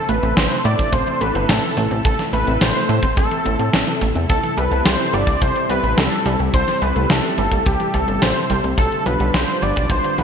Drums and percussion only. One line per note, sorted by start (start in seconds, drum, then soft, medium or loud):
0.09 closed hi-hat medium
0.09 shaker medium
0.23 closed hi-hat soft
0.23 shaker soft
0.37 snare loud
0.37 closed hi-hat loud
0.37 shaker soft
0.51 closed hi-hat soft
0.51 shaker soft
0.65 closed hi-hat medium
0.65 shaker medium
0.79 kick loud
0.79 closed hi-hat soft
0.79 shaker soft
0.93 kick loud
0.93 closed hi-hat medium
0.93 shaker soft
1.07 closed hi-hat soft
1.07 shaker soft
1.21 closed hi-hat medium
1.21 shaker medium
1.35 closed hi-hat soft
1.35 shaker soft
1.49 snare loud
1.49 closed hi-hat loud
1.49 shaker soft
1.63 closed hi-hat soft
1.63 shaker soft
1.77 open hi-hat medium
1.77 shaker medium
1.91 closed hi-hat soft
1.91 shaker soft
2.05 kick loud
2.05 closed hi-hat medium
2.05 shaker soft
2.19 snare soft
2.19 closed hi-hat soft
2.19 shaker soft
2.33 closed hi-hat medium
2.33 shaker medium
2.47 closed hi-hat soft
2.47 shaker soft
2.61 snare loud
2.61 closed hi-hat medium
2.61 shaker soft
2.75 closed hi-hat soft
2.75 shaker soft
2.89 closed hi-hat medium
2.89 shaker medium
3.03 kick loud
3.03 closed hi-hat soft
3.03 shaker soft
3.17 kick loud
3.17 closed hi-hat medium
3.17 shaker soft
3.31 closed hi-hat soft
3.31 shaker soft
3.45 kick medium
3.45 closed hi-hat medium
3.45 shaker medium
3.59 closed hi-hat soft
3.59 shaker soft
3.73 snare loud
3.73 closed hi-hat medium
3.73 shaker soft
3.87 closed hi-hat soft
3.87 shaker soft
4.01 kick medium
4.01 open hi-hat medium
4.01 shaker medium
4.15 closed hi-hat soft
4.15 shaker soft
4.29 kick loud
4.29 closed hi-hat medium
4.29 shaker soft
4.43 closed hi-hat soft
4.43 shaker soft
4.58 closed hi-hat medium
4.58 shaker medium
4.72 closed hi-hat soft
4.72 shaker soft
4.86 snare loud
4.86 closed hi-hat medium
4.86 shaker soft
5.00 closed hi-hat soft
5.00 shaker soft
5.14 closed hi-hat medium
5.14 shaker medium
5.27 kick loud
5.27 closed hi-hat soft
5.27 shaker soft
5.42 kick loud
5.42 closed hi-hat medium
5.42 shaker soft
5.56 closed hi-hat soft
5.56 shaker soft
5.70 closed hi-hat medium
5.70 shaker medium
5.84 closed hi-hat soft
5.84 shaker soft
5.98 snare loud
5.98 closed hi-hat medium
5.98 shaker soft
6.12 closed hi-hat soft
6.12 shaker soft
6.26 open hi-hat medium
6.26 shaker medium
6.40 closed hi-hat soft
6.40 shaker soft
6.54 kick loud
6.54 closed hi-hat medium
6.54 shaker soft
6.68 snare soft
6.68 closed hi-hat soft
6.68 shaker soft
6.82 closed hi-hat medium
6.82 shaker medium
6.96 closed hi-hat soft
6.96 shaker soft
7.10 snare loud
7.10 closed hi-hat medium
7.10 shaker soft
7.24 closed hi-hat soft
7.24 shaker soft
7.38 closed hi-hat medium
7.38 shaker medium
7.52 kick loud
7.52 closed hi-hat soft
7.52 shaker soft
7.66 kick loud
7.66 closed hi-hat medium
7.66 shaker soft
7.80 closed hi-hat soft
7.80 shaker soft
7.94 kick medium
7.94 closed hi-hat medium
7.94 shaker medium
8.08 closed hi-hat soft
8.08 shaker soft
8.22 snare loud
8.22 closed hi-hat medium
8.22 shaker soft
8.36 closed hi-hat soft
8.36 shaker soft
8.50 kick medium
8.50 open hi-hat medium
8.50 shaker medium
8.64 closed hi-hat soft
8.64 shaker soft
8.78 kick loud
8.78 closed hi-hat medium
8.78 shaker soft
8.92 closed hi-hat soft
8.92 shaker soft
9.06 closed hi-hat medium
9.06 shaker medium
9.20 closed hi-hat soft
9.20 shaker soft
9.34 snare loud
9.34 closed hi-hat medium
9.34 shaker soft
9.48 closed hi-hat soft
9.48 shaker soft
9.62 closed hi-hat medium
9.62 shaker medium
9.76 kick loud
9.76 closed hi-hat soft
9.76 shaker soft
9.90 kick loud
9.90 closed hi-hat medium
9.90 shaker soft
10.04 closed hi-hat soft
10.04 shaker soft
10.18 closed hi-hat medium
10.18 shaker medium